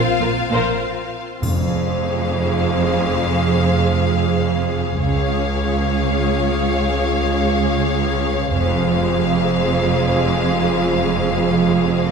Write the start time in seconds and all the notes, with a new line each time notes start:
Already playing: C4 F4 C5 F5
0.20 A#1 A#2 A#4
0.50 A#1 A#2 A#4 C5
1.41 F1 F2 C4 G#4 C5 F5, triangle
5.01 C#2 G#3 F4 G#4 C#5 F5
8.54 F1 F2 G#3 F4 G#4 C5 F5